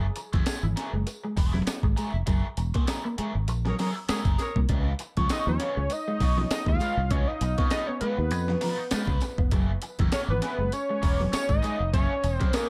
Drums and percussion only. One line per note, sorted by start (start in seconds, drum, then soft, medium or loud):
0.16 closed hi-hat medium
0.16 tambourine medium
0.33 kick medium
0.33 snare soft
0.33 closed hi-hat medium
0.46 snare loud
0.46 closed hi-hat medium
0.46 tambourine medium
0.77 snare soft
0.77 closed hi-hat medium
0.77 tambourine soft
1.07 closed hi-hat medium
1.07 tambourine medium
1.37 kick medium
1.37 open hi-hat medium
1.37 tambourine medium
1.55 snare soft
1.67 snare loud
1.67 closed hi-hat medium
1.67 tambourine loud
1.83 kick medium
1.97 closed hi-hat medium
1.97 tambourine medium
2.27 kick loud
2.27 closed hi-hat medium
2.27 tambourine soft
2.57 closed hi-hat medium
2.57 tambourine soft
2.74 kick medium
2.74 snare soft
2.74 closed hi-hat medium
2.87 snare loud
2.87 closed hi-hat medium
2.87 tambourine medium
3.18 closed hi-hat medium
3.48 closed hi-hat medium
3.48 tambourine medium
3.66 snare soft
3.79 snare soft
3.79 open hi-hat medium
3.79 tambourine medium
4.09 snare loud
4.09 closed hi-hat loud
4.09 tambourine loud
4.25 kick medium
4.25 closed hi-hat soft
4.38 snare soft
4.38 closed hi-hat medium
4.38 tambourine medium
4.56 kick medium
4.69 kick loud
4.69 closed hi-hat medium
4.99 closed hi-hat medium
4.99 tambourine medium
5.17 kick medium
5.17 snare soft
5.17 closed hi-hat medium
5.29 snare medium
5.29 closed hi-hat medium
5.29 tambourine medium
5.60 snare soft
5.60 closed hi-hat medium
5.60 tambourine soft
5.90 closed hi-hat medium
5.90 tambourine medium
6.20 kick medium
6.20 open hi-hat medium
6.20 tambourine medium
6.38 snare soft
6.51 snare loud
6.51 closed hi-hat loud
6.51 tambourine loud
6.66 kick medium
6.80 closed hi-hat medium
6.80 tambourine medium
7.11 kick loud
7.11 closed hi-hat medium
7.41 closed hi-hat medium
7.41 tambourine soft
7.58 kick medium
7.58 snare soft
7.58 closed hi-hat medium
7.70 snare loud
7.70 closed hi-hat medium
7.70 tambourine medium
8.01 closed hi-hat medium
8.31 closed hi-hat medium
8.31 tambourine medium
8.48 snare soft
8.61 snare soft
8.61 open hi-hat medium
8.61 tambourine medium
8.91 snare loud
8.91 closed hi-hat loud
8.91 tambourine loud
9.07 kick medium
9.20 snare soft
9.20 closed hi-hat medium
9.20 tambourine medium
9.38 kick medium
9.51 kick loud
9.51 closed hi-hat medium
9.51 tambourine soft
9.82 closed hi-hat medium
9.82 tambourine medium
9.99 kick medium
9.99 snare soft
9.99 closed hi-hat medium
10.12 snare loud
10.12 closed hi-hat medium
10.12 tambourine medium
10.42 snare soft
10.42 closed hi-hat medium
10.42 tambourine soft
10.72 closed hi-hat medium
10.72 tambourine medium
11.03 kick medium
11.03 open hi-hat medium
11.03 tambourine medium
11.21 snare soft
11.33 snare loud
11.33 closed hi-hat loud
11.33 tambourine loud
11.49 kick medium
11.62 closed hi-hat medium
11.62 tambourine medium
11.94 kick loud
11.94 closed hi-hat medium
11.94 tambourine soft
12.24 closed hi-hat medium
12.24 tambourine medium
12.41 kick medium
12.41 snare soft
12.41 closed hi-hat medium
12.53 snare loud
12.53 closed hi-hat loud
12.53 tambourine medium